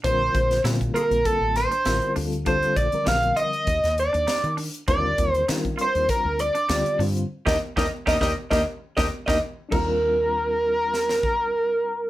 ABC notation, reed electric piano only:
X:1
M:4/4
L:1/16
Q:"Swing 16ths" 1/4=99
K:Eblyd
V:1 name="Reed electric piano"
[D,G,CFB]3 z [D,G,B,CF]6- [D,G,B,CF] z [D,G,CFB]2 [D,G,CFA]2 | [D,G,CFA]3 [D,F,G,CB]4- [D,F,G,CB] z8 | [D,G,CFB]3 z [G,CDFB]6- [G,CDFB] z [D,G,CFG]2 [D,G,CFc]2 | z [B,DE] z [B,DE] z [B,DE] [B,DE] z [B,DE] z2 [B,DE] z [B,DE] z2 |
[G,CDFB]16 |]